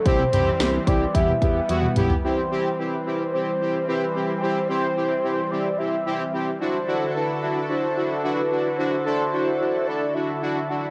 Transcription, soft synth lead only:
\new Staff \with { instrumentName = "Soft synth lead" } { \time 4/4 \key c \lydian \tempo 4 = 110 c''4. d''8 e''4. r8 | c''4 b'4 c''4 b'4 | c''8 c''4. d''8 e''4 r8 | c''4 b'4 c''4 b'4 |
c''8 c''4. d''8 e''4 r8 | }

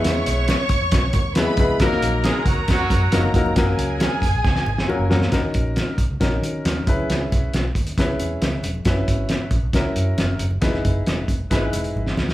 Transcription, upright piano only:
\new Staff \with { instrumentName = "Upright piano" } { \time 4/4 \key dis \phrygian \tempo 4 = 136 <gis b e' gis' b'>4 r2 <gis b e' gis' b'>8 <gis b e' gis' b'>8 | <fis ais dis' fis' ais'>4. r4. <fis ais dis' fis' ais'>8 <fis ais dis' fis' ais'>8 | <fis ais cis' fis' ais'>4. r4. <fis ais cis' fis' ais'>8 <fis ais cis' fis' ais'>8 | <cis' dis' fis' ais'>4. r8 <cis' dis' fis' ais'>4. <cis' e' gis' b'>8~ |
<cis' e' gis' b'>4 r4 <cis' e' gis' b'>4. r8 | <cis' e' fis' b'>4. r8 <cis' e' fis' ais'>4. r8 | <dis' e' gis' b'>4. r8 <dis' e' gis' b'>4. r8 | }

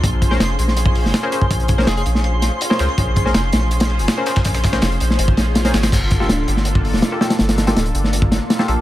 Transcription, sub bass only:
\new Staff \with { instrumentName = "Sub bass" } { \clef bass \time 4/4 \key bes \major \tempo 4 = 163 bes,,4 f,,8 bes,,4~ bes,,16 f,,16 r4 | bes,,4 f,,8 bes,,4~ bes,,16 r8. des,16 r16 | bes,,4 f,,8 bes,,4~ bes,,16 f,,16 r4 | bes,,4 f,,8 bes,,8 aes,,8 bes,,4 aes,,8 |
g,,4 d,,8 g,,4~ g,,16 d,,16 r4 | g,,4 d,,8 g,,4~ g,,16 r8. bes,,16 r16 | }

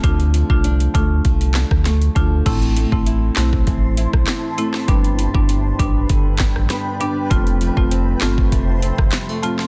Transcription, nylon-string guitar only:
\new Staff \with { instrumentName = "Nylon-string guitar" } { \time 4/4 \key a \minor \tempo 4 = 99 d8 f8 d'8 a8 f8 d'8 a8 f8 | a,8 a8 e'8 c'8 e8 e'8 c'8 a8 | g,8 g8 d'8 b8 d8 d'8 b8 g8 | f,8 f8 c'8 a8 c8 c'8 g16 a16 f8 | }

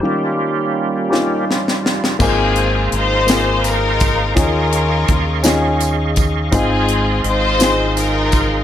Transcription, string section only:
\new Staff \with { instrumentName = "String section" } { \time 6/8 \key aes \major \tempo 4. = 55 r2. | <c' f' aes'>4 <ees' f' c''>4 <ees' f' bes'>4 | <des' f' bes'>2 r4 | <c' f' aes'>4 <ees' f' c''>4 <ees' f' bes'>4 | }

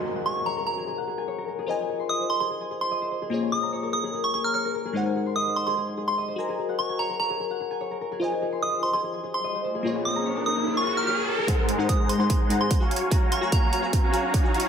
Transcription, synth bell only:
\new Staff \with { instrumentName = "Synth bell" } { \time 4/4 \key bes \minor \tempo 4 = 147 r8 des'''8 bes''8 bes''4. r4 | r4 ees'''8 c'''16 c'''16 r8. c'''8 r8. | r8 ees'''8 r8 ees'''8. des'''16 des'''16 f'''16 f'''16 r8. | r4 ees'''8 c'''16 c'''16 r8. c'''8 r8. |
r8 des'''8 bes''8 bes''4. r4 | r4 ees'''8 c'''16 c'''16 r8. c'''8 r8. | r8 ees'''8 r8 ees'''8. des'''16 des'''16 f'''16 f'''16 r8. | r4 ees'''8 c'''16 c'''16 r8. c'''8 r8. |
r8 des'''8 bes''8 bes''4. r4 | }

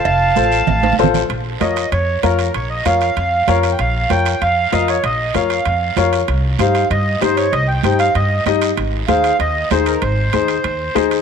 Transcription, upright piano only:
\new Staff \with { instrumentName = "Upright piano" } { \time 4/4 \key bes \dorian \tempo 4 = 193 r4 <f' a' c''>8 r4. <f' a' c''>8 r8 | r4 <f' bes' des''>8 r4. <f' bes' des''>8 r8 | r4 <f' bes' des''>8 r4. <f' bes' des''>8 r8 | r4 <f' bes' des''>8 r4. <f' bes' ees''>8 r8 |
r4 <f' bes' des''>8 r4. <f' bes' des''>8 r8 | r4 <ees' g' c''>8 r4. <ees' g' c''>8 r8 | r4 <ees' g' c''>8 r4. <ees' g' ees''>8 r8 | r4 <ees' aes' c''>8 r4. <ees' aes' c''>8 r8 |
r4 <ees' aes' c''>8 r4. <ees' aes' c''>8 r8 | }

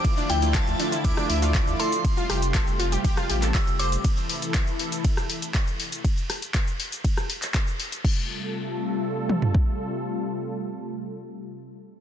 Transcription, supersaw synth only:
\new Staff \with { instrumentName = "Supersaw synth" } { \time 4/4 \key f \major \tempo 4 = 120 <a e' f' d''>16 <a e' f' d''>16 r16 <a e' f' d''>8 <a e' f' e''>16 <a e' f' e''>16 r16 <a e' f' e''>16 <a e' f' e''>8 <a e' f' d''>16 r16 <a e' f' d''>16 <a e' f' d''>16 r16 | r1 | r1 | r1 |
r1 | r1 | }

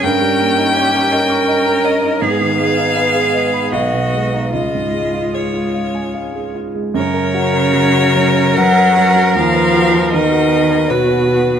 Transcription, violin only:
\new Staff \with { instrumentName = "Violin" } { \time 3/4 \key fis \major \tempo 4 = 78 g''2~ g''8 dis''8 | eis''2 dis''4 | dis''4 cis''4. r8 | cis''2 fis''4 |
eis''4 dis''4 b'4 | }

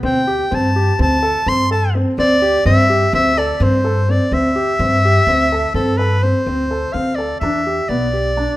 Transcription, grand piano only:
\new Staff \with { instrumentName = "Grand piano" } { \time 9/8 \key c \major \tempo 4. = 84 c'8 g'8 c'8 g'8 c'8 a'8 c'8 a'8 c'8 | c'8 g'8 c'8 g'8 c'8 a'8 c'8 a'8 c'8 | c'8 g'8 c'8 g'8 c'8 a'8 c'8 a'8 c'8 | c'8 a'8 c'8 a'8 d'8 g'8 b8 g'8 d'8 | }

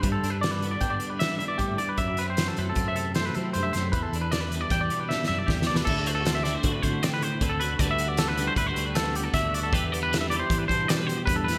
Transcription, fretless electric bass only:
\new Staff \with { instrumentName = "Fretless electric bass" } { \clef bass \time 5/4 \key e \minor \tempo 4 = 155 g,8 g,4. g,8 r4. g,8 r8 | fis,4. fis,8 fis,4. fis8 fis,8 fis,8 | e,8 e,4. e,8 r4 fis,8 e,8 d,8 | d,2 d8 d4. d,4 |
d,2 d,8 d,4. d,4 | e,2 e8 e4. e,4 | }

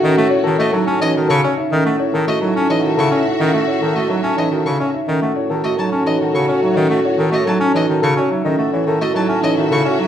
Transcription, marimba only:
\new Staff \with { instrumentName = "Marimba" } { \time 3/4 \key a \lydian \tempo 4 = 107 cis'16 a'16 e'16 a'16 r16 dis'16 r16 dis'16 fis'16 cis''16 r16 dis'16 | cis'16 a'16 e'16 a'16 fis'16 dis'16 cis'16 dis'16 fis'16 cis''16 r16 dis'16 | cis'16 a'16 e'16 a'16 fis'16 dis'16 cis'16 dis'16 fis'16 cis''16 r16 dis'16 | cis'16 a'16 e'16 a'16 fis'16 dis'16 cis'16 dis'16 r16 cis''16 fis'16 dis'16 |
cis'16 a'16 e'16 a'16 fis'16 dis'16 cis'16 dis'16 fis'16 cis''16 fis'16 dis'16 | cis'16 a'16 e'16 a'16 fis'16 dis'16 r16 dis'16 fis'16 cis''16 fis'16 dis'16 | }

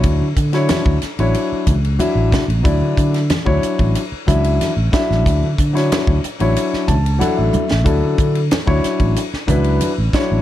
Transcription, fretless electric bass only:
\new Staff \with { instrumentName = "Fretless electric bass" } { \clef bass \time 4/4 \key d \major \tempo 4 = 92 d,16 d16 d8 r16 d,16 r16 a,,16 r8 cis,8 r16 a,,16 r16 a,,16 | d,16 d16 d8 r16 d,16 r16 a,,16 r8 cis,8 r16 a,,16 r16 a,,16 | d,16 d16 d8 r16 d,16 r16 a,,16 r8 cis,8 r16 a,,16 r16 a,,16 | d,16 d16 d8 r16 d,16 r16 a,,16 r8 cis,8 r16 a,,16 r16 a,,16 | }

